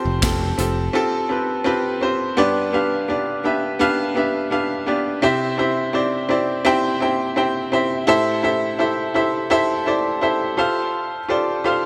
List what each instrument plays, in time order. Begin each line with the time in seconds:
Already playing: upright piano C4 F4 G4 A4 C5
0.05 picked electric bass F1
0.22 picked electric bass F1, upright piano C4 F4 G4 A4, kick, snare, clap, closed hi-hat
0.58 picked electric bass F1, upright piano C4 F4 G4 A4, closed hi-hat
0.93 upright piano C4 F4 G4 A4
1.29 upright piano C4 F4 G4 B4
1.64 upright piano C4 F4 G4 B4
2.01 upright piano C4 F4 G4 C5
2.37 upright piano G2 B3 D4 G4 B4 D5
2.73 upright piano B3 D4 G4 B4 F5
3.08 upright piano B3 D4 G4 B4 D5
3.44 upright piano B3 D4 G4 B4 E5
3.79 upright piano B3 D4 G4 B4 F5
4.15 upright piano B3 D4 G4 B4 E5
4.50 upright piano B3 D4 G4 B4 F5
4.86 upright piano B3 D4 G4 B4 D5
5.22 upright piano C3 C4 E4 G4 C5 E5
5.58 upright piano C4 E4 G4 C5 E5
5.93 upright piano C4 E4 G4 C5 D5
6.29 upright piano C4 E4 G4 C5 D5
6.65 upright piano C4 E4 G4 C5 G5
7.00 upright piano C4 E4 G4 C5 G5
7.36 upright piano C4 E4 G4 C5 G5
7.72 upright piano C4 E4 G4 C5 E5
8.07 upright piano A2 E4 G4 A4 C5 E5
8.43 upright piano E4 G4 A4 C5 E5
8.79 upright piano E4 G4 A4 C5 E5
9.14 upright piano E4 G4 A4 C5 E5
9.50 upright piano E4 G4 A4 C5 E5
9.86 upright piano E4 G4 A4 C5 D5
10.21 upright piano E4 G4 A4 C5 E5
10.57 upright piano F4 G4 A4 C5 F5
11.28 upright piano F4 G4 A4 C5 D5
11.64 upright piano F4 G4 A4 C5 F5